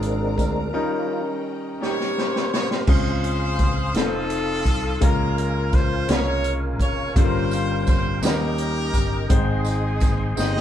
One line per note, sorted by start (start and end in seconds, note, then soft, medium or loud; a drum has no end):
0.00 0.34 G#1 medium
0.00 0.76 A#2 medium
0.00 0.69 G#3 medium
0.00 0.76 G#3 medium
0.00 0.70 C4 medium
0.00 0.70 D4 medium
0.00 0.76 D4 medium
0.00 0.77 F4 medium
0.00 0.64 G#4 medium
0.00 0.74 A#4 medium
0.00 1.42 A#4 medium
0.00 0.71 D5 medium
0.00 0.70 F5 medium
0.00 2.83 A#5 medium
0.00 closed hi-hat medium
0.37 0.71 D2 medium
0.37 kick medium
0.37 closed hi-hat medium
0.37 tambourine soft
0.73 1.77 D#3 medium
0.73 1.70 G3 medium
0.73 1.21 G3 medium
0.73 2.85 C#4 medium
0.73 1.22 C#4 medium
0.73 1.70 C#4 medium
0.73 1.70 D#4 medium
0.73 1.21 F4 medium
0.73 1.70 A#4 loud
0.73 2.86 D#5 medium
0.73 2.85 G5 medium
1.81 2.77 G3 medium
1.81 2.77 C#4 medium
1.81 2.77 D#4 medium
1.81 2.85 G4 medium
1.81 2.78 G4 medium
1.81 1.98 G4 medium
1.81 2.84 A#4 medium
1.81 2.49 C#5 loud
1.81 snare medium
2.00 snare soft
2.17 2.84 C5 loud
2.17 snare medium
2.36 snare medium
2.53 2.69 C#5 loud
2.53 snare medium
2.71 snare medium
2.87 3.91 C#2 loud
2.87 3.91 C#3 medium
2.87 3.84 G#3 medium
2.87 3.84 C4 medium
2.87 3.84 C#4 medium
2.87 3.91 F4 medium
2.87 3.84 F4 medium
2.87 3.91 G#4 medium
2.87 3.95 G#4 medium
2.87 3.91 C5 loud
2.87 3.85 C5 medium
2.87 8.19 F5 medium
2.87 5.00 C6 medium
2.87 kick loud
2.87 crash loud
3.24 closed hi-hat soft
3.59 kick loud
3.59 snare soft
3.59 closed hi-hat medium
3.94 4.62 F1 loud
3.94 4.91 A3 medium
3.94 4.91 C4 medium
3.94 4.99 C4 medium
3.94 4.91 D#4 medium
3.94 4.98 D#4 medium
3.94 4.92 F4 medium
3.94 5.03 A4 loud
3.94 5.02 A4 medium
3.94 4.92 C5 medium
3.94 5.02 D#6 medium
3.94 snare loud
3.94 closed hi-hat medium
4.30 closed hi-hat medium
4.65 4.99 C2 medium
4.65 kick medium
4.65 closed hi-hat medium
5.01 6.05 C#2 loud
5.01 6.04 C#3 medium
5.01 5.97 G#3 medium
5.01 5.97 A#3 medium
5.01 5.98 C#4 medium
5.01 5.98 F4 medium
5.01 6.06 F4 medium
5.01 5.98 A#4 medium
5.01 9.26 A#4 medium
5.01 7.14 G#5 medium
5.01 kick loud
5.01 closed hi-hat medium
5.05 5.75 A#4 medium
5.38 closed hi-hat medium
5.73 6.09 C5 loud
5.73 kick loud
5.73 snare soft
5.73 closed hi-hat soft
6.08 6.79 C2 loud
6.08 7.04 G#3 medium
6.08 7.05 A#3 medium
6.08 7.05 C#4 medium
6.08 7.05 F4 medium
6.08 7.05 A#4 medium
6.08 6.53 C#5 loud
6.08 snare loud
6.08 closed hi-hat medium
6.44 closed hi-hat medium
6.79 7.12 F1 medium
6.79 7.14 C#5 medium
6.79 kick medium
6.79 closed hi-hat medium
7.16 8.19 G1 loud
7.16 8.19 G2 medium
7.16 8.12 G3 loud
7.16 8.12 A#3 medium
7.16 8.12 C#4 medium
7.16 8.19 F4 medium
7.16 8.12 F4 medium
7.16 7.23 A4 medium
7.16 7.88 C5 loud
7.16 10.61 G5 medium
7.16 kick loud
7.16 closed hi-hat medium
7.24 8.16 A#4 loud
7.51 closed hi-hat medium
7.51 tambourine medium
7.87 8.21 C5 loud
7.87 kick loud
7.87 snare soft
7.87 closed hi-hat medium
7.87 tambourine medium
8.21 8.90 D#2 loud
8.21 9.25 D#3 medium
8.21 9.18 G3 medium
8.21 9.18 A#3 medium
8.21 9.18 C#4 medium
8.21 9.26 C#4 medium
8.21 9.18 D#4 medium
8.21 9.26 G4 medium
8.21 9.18 A#4 medium
8.21 9.31 A#4 loud
8.21 10.61 D#5 medium
8.21 snare loud
8.21 closed hi-hat medium
8.21 tambourine loud
8.58 closed hi-hat medium
8.94 9.27 G1 medium
8.94 kick medium
8.94 closed hi-hat medium
8.94 tambourine medium
9.29 10.33 G#1 loud
9.29 10.33 G#2 medium
9.29 10.25 G#3 medium
9.29 10.61 G#3 medium
9.29 10.25 C4 medium
9.29 10.33 C4 medium
9.29 10.25 D#4 medium
9.29 10.33 D#4 medium
9.29 10.38 G#4 medium
9.29 10.26 C5 loud
9.29 10.26 G5 medium
9.29 10.61 C6 medium
9.29 kick loud
9.29 closed hi-hat loud
9.65 closed hi-hat medium
9.65 tambourine medium
10.00 kick loud
10.00 snare soft
10.00 closed hi-hat medium
10.00 tambourine soft
10.36 10.61 G1 loud
10.36 10.61 G#3 medium
10.36 10.61 C4 medium
10.36 10.61 D#4 medium
10.36 10.61 G4 medium
10.36 10.61 C5 medium
10.36 10.61 D#5 loud
10.36 10.61 G5 medium
10.36 snare medium
10.36 tambourine medium
10.40 10.61 G#4 medium
10.56 snare medium